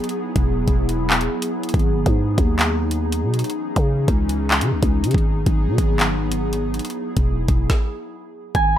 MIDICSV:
0, 0, Header, 1, 5, 480
1, 0, Start_track
1, 0, Tempo, 425532
1, 44, Time_signature, 4, 2, 24, 8
1, 9907, End_track
2, 0, Start_track
2, 0, Title_t, "Harp"
2, 0, Program_c, 0, 46
2, 9643, Note_on_c, 0, 80, 108
2, 9907, Note_off_c, 0, 80, 0
2, 9907, End_track
3, 0, Start_track
3, 0, Title_t, "Analog synth pad"
3, 0, Program_c, 1, 89
3, 0, Note_on_c, 1, 54, 84
3, 0, Note_on_c, 1, 59, 76
3, 0, Note_on_c, 1, 68, 90
3, 44, Note_on_c, 1, 64, 76
3, 1944, Note_off_c, 1, 64, 0
3, 1964, Note_on_c, 1, 63, 75
3, 3838, Note_off_c, 1, 54, 0
3, 3838, Note_off_c, 1, 59, 0
3, 3884, Note_on_c, 1, 61, 72
3, 3885, Note_on_c, 1, 52, 82
3, 5758, Note_off_c, 1, 68, 0
3, 5784, Note_off_c, 1, 61, 0
3, 5785, Note_off_c, 1, 52, 0
3, 5803, Note_on_c, 1, 54, 82
3, 5804, Note_on_c, 1, 59, 73
3, 5804, Note_on_c, 1, 68, 88
3, 7678, Note_off_c, 1, 63, 0
3, 7704, Note_off_c, 1, 68, 0
3, 7723, Note_on_c, 1, 68, 88
3, 7724, Note_on_c, 1, 64, 71
3, 8655, Note_off_c, 1, 54, 0
3, 8655, Note_off_c, 1, 59, 0
3, 8674, Note_off_c, 1, 64, 0
3, 8674, Note_off_c, 1, 68, 0
3, 9644, Note_on_c, 1, 54, 84
3, 9644, Note_on_c, 1, 59, 77
3, 9644, Note_on_c, 1, 63, 74
3, 9644, Note_on_c, 1, 68, 91
3, 9907, Note_off_c, 1, 54, 0
3, 9907, Note_off_c, 1, 59, 0
3, 9907, Note_off_c, 1, 63, 0
3, 9907, Note_off_c, 1, 68, 0
3, 9907, End_track
4, 0, Start_track
4, 0, Title_t, "808-style bass"
4, 0, Program_c, 2, 38
4, 404, Note_on_c, 2, 28, 103
4, 749, Note_off_c, 2, 28, 0
4, 763, Note_on_c, 2, 28, 105
4, 1454, Note_off_c, 2, 28, 0
4, 1964, Note_on_c, 2, 32, 109
4, 2309, Note_off_c, 2, 32, 0
4, 2324, Note_on_c, 2, 44, 104
4, 2669, Note_off_c, 2, 44, 0
4, 2684, Note_on_c, 2, 39, 107
4, 3643, Note_on_c, 2, 47, 104
4, 3660, Note_off_c, 2, 39, 0
4, 3871, Note_off_c, 2, 47, 0
4, 4245, Note_on_c, 2, 49, 99
4, 4590, Note_off_c, 2, 49, 0
4, 4604, Note_on_c, 2, 37, 108
4, 5203, Note_on_c, 2, 49, 98
4, 5220, Note_off_c, 2, 37, 0
4, 5322, Note_on_c, 2, 37, 97
4, 5339, Note_off_c, 2, 49, 0
4, 5437, Note_off_c, 2, 37, 0
4, 5444, Note_on_c, 2, 37, 108
4, 5680, Note_on_c, 2, 49, 97
4, 5697, Note_off_c, 2, 37, 0
4, 5796, Note_off_c, 2, 49, 0
4, 5803, Note_on_c, 2, 32, 106
4, 6149, Note_off_c, 2, 32, 0
4, 6164, Note_on_c, 2, 32, 104
4, 6401, Note_on_c, 2, 47, 99
4, 6418, Note_off_c, 2, 32, 0
4, 6516, Note_off_c, 2, 47, 0
4, 6524, Note_on_c, 2, 32, 103
4, 7678, Note_off_c, 2, 32, 0
4, 8084, Note_on_c, 2, 28, 102
4, 8429, Note_off_c, 2, 28, 0
4, 8443, Note_on_c, 2, 28, 101
4, 8674, Note_off_c, 2, 28, 0
4, 9643, Note_on_c, 2, 32, 109
4, 9907, Note_off_c, 2, 32, 0
4, 9907, End_track
5, 0, Start_track
5, 0, Title_t, "Drums"
5, 43, Note_on_c, 9, 42, 61
5, 103, Note_off_c, 9, 42, 0
5, 103, Note_on_c, 9, 42, 61
5, 216, Note_off_c, 9, 42, 0
5, 403, Note_on_c, 9, 42, 76
5, 404, Note_on_c, 9, 36, 98
5, 515, Note_off_c, 9, 42, 0
5, 517, Note_off_c, 9, 36, 0
5, 763, Note_on_c, 9, 36, 104
5, 763, Note_on_c, 9, 42, 87
5, 875, Note_off_c, 9, 42, 0
5, 876, Note_off_c, 9, 36, 0
5, 1003, Note_on_c, 9, 42, 85
5, 1116, Note_off_c, 9, 42, 0
5, 1243, Note_on_c, 9, 39, 125
5, 1356, Note_off_c, 9, 39, 0
5, 1364, Note_on_c, 9, 42, 89
5, 1476, Note_off_c, 9, 42, 0
5, 1604, Note_on_c, 9, 42, 92
5, 1716, Note_off_c, 9, 42, 0
5, 1844, Note_on_c, 9, 42, 62
5, 1904, Note_off_c, 9, 42, 0
5, 1904, Note_on_c, 9, 42, 61
5, 1963, Note_on_c, 9, 36, 110
5, 1964, Note_off_c, 9, 42, 0
5, 1964, Note_on_c, 9, 42, 61
5, 2024, Note_off_c, 9, 42, 0
5, 2024, Note_on_c, 9, 42, 58
5, 2076, Note_off_c, 9, 36, 0
5, 2137, Note_off_c, 9, 42, 0
5, 2324, Note_on_c, 9, 36, 98
5, 2324, Note_on_c, 9, 42, 78
5, 2437, Note_off_c, 9, 36, 0
5, 2437, Note_off_c, 9, 42, 0
5, 2684, Note_on_c, 9, 36, 100
5, 2684, Note_on_c, 9, 42, 90
5, 2796, Note_off_c, 9, 36, 0
5, 2796, Note_off_c, 9, 42, 0
5, 2923, Note_on_c, 9, 39, 117
5, 2923, Note_on_c, 9, 42, 80
5, 3036, Note_off_c, 9, 39, 0
5, 3036, Note_off_c, 9, 42, 0
5, 3284, Note_on_c, 9, 42, 87
5, 3397, Note_off_c, 9, 42, 0
5, 3524, Note_on_c, 9, 42, 88
5, 3637, Note_off_c, 9, 42, 0
5, 3764, Note_on_c, 9, 42, 61
5, 3824, Note_off_c, 9, 42, 0
5, 3824, Note_on_c, 9, 42, 63
5, 3884, Note_off_c, 9, 42, 0
5, 3884, Note_on_c, 9, 42, 61
5, 3944, Note_off_c, 9, 42, 0
5, 3944, Note_on_c, 9, 42, 61
5, 4057, Note_off_c, 9, 42, 0
5, 4244, Note_on_c, 9, 42, 78
5, 4245, Note_on_c, 9, 36, 99
5, 4357, Note_off_c, 9, 42, 0
5, 4358, Note_off_c, 9, 36, 0
5, 4603, Note_on_c, 9, 42, 91
5, 4604, Note_on_c, 9, 36, 99
5, 4716, Note_off_c, 9, 36, 0
5, 4716, Note_off_c, 9, 42, 0
5, 4843, Note_on_c, 9, 42, 85
5, 4956, Note_off_c, 9, 42, 0
5, 5083, Note_on_c, 9, 39, 124
5, 5196, Note_off_c, 9, 39, 0
5, 5203, Note_on_c, 9, 42, 90
5, 5316, Note_off_c, 9, 42, 0
5, 5443, Note_on_c, 9, 42, 92
5, 5444, Note_on_c, 9, 36, 91
5, 5556, Note_off_c, 9, 36, 0
5, 5556, Note_off_c, 9, 42, 0
5, 5683, Note_on_c, 9, 42, 75
5, 5763, Note_off_c, 9, 42, 0
5, 5763, Note_on_c, 9, 42, 58
5, 5803, Note_on_c, 9, 36, 111
5, 5842, Note_off_c, 9, 42, 0
5, 5842, Note_on_c, 9, 42, 43
5, 5916, Note_off_c, 9, 36, 0
5, 5955, Note_off_c, 9, 42, 0
5, 6163, Note_on_c, 9, 42, 80
5, 6164, Note_on_c, 9, 36, 102
5, 6276, Note_off_c, 9, 42, 0
5, 6277, Note_off_c, 9, 36, 0
5, 6523, Note_on_c, 9, 36, 98
5, 6523, Note_on_c, 9, 42, 91
5, 6636, Note_off_c, 9, 36, 0
5, 6636, Note_off_c, 9, 42, 0
5, 6763, Note_on_c, 9, 39, 116
5, 6763, Note_on_c, 9, 42, 82
5, 6876, Note_off_c, 9, 39, 0
5, 6876, Note_off_c, 9, 42, 0
5, 7124, Note_on_c, 9, 42, 88
5, 7236, Note_off_c, 9, 42, 0
5, 7364, Note_on_c, 9, 42, 90
5, 7476, Note_off_c, 9, 42, 0
5, 7604, Note_on_c, 9, 42, 62
5, 7664, Note_off_c, 9, 42, 0
5, 7664, Note_on_c, 9, 42, 61
5, 7723, Note_off_c, 9, 42, 0
5, 7723, Note_on_c, 9, 42, 61
5, 7783, Note_off_c, 9, 42, 0
5, 7783, Note_on_c, 9, 42, 60
5, 7896, Note_off_c, 9, 42, 0
5, 8083, Note_on_c, 9, 42, 80
5, 8084, Note_on_c, 9, 36, 98
5, 8196, Note_off_c, 9, 42, 0
5, 8197, Note_off_c, 9, 36, 0
5, 8442, Note_on_c, 9, 42, 88
5, 8443, Note_on_c, 9, 36, 98
5, 8555, Note_off_c, 9, 42, 0
5, 8556, Note_off_c, 9, 36, 0
5, 8682, Note_on_c, 9, 38, 94
5, 8683, Note_on_c, 9, 36, 108
5, 8795, Note_off_c, 9, 38, 0
5, 8796, Note_off_c, 9, 36, 0
5, 9643, Note_on_c, 9, 36, 111
5, 9643, Note_on_c, 9, 42, 72
5, 9756, Note_off_c, 9, 36, 0
5, 9756, Note_off_c, 9, 42, 0
5, 9907, End_track
0, 0, End_of_file